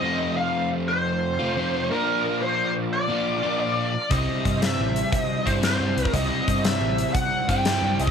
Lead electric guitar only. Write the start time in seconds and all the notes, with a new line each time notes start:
Already playing: D#5
0.37 F5
0.88 C5
1.91 A#4
2.42 C5
2.93 D5
3.60 D5
4.12 D#5
4.63 E5
5.13 D#5
5.47 C5
5.64 C5
6.14 D#5
6.65 E5
7.14 F#5
7.49 G5
8.01 D#5